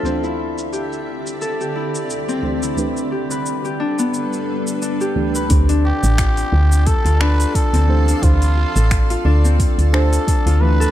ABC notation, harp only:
X:1
M:4/4
L:1/16
Q:"Swing 16ths" 1/4=88
K:Ddor
V:1 name="Harp"
C E3 G z3 A G E3 C z E | z2 G B2 G D B, z4 D G z B | C D3 F z3 A F D3 C z D- | D2 F A2 F D C z4 D F z A |]